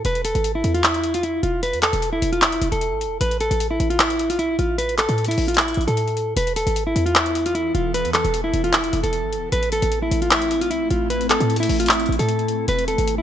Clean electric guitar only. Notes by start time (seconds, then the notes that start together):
0.06 B4
0.25 A4
0.55 E4
0.74 F4
0.84 E4
1.15 F4
1.23 E4
1.43 F4
1.63 B4
1.83 A4
2.13 E4
2.32 F4
2.42 E4
2.72 A4
3.21 B4
3.41 A4
3.71 E4
3.90 F4
3.99 E4
4.30 F4
4.39 E4
4.59 F4
4.78 B4
4.98 A4
5.28 E4
5.48 F4
5.57 E4
5.87 A4
6.37 B4
6.56 A4
6.87 E4
7.06 F4
7.15 E4
7.46 F4
7.55 E4
7.75 F4
7.94 B4
8.14 A4
8.44 E4
8.64 F4
8.73 E4
9.03 A4
9.52 B4
9.72 A4
10.02 E4
10.22 F4
10.31 E4
10.61 F4
10.70 E4
10.91 F4
11.10 B4
11.30 A4
11.60 E4
11.80 F4
11.89 E4
12.19 A4
12.69 B4
12.88 A4
13.18 E4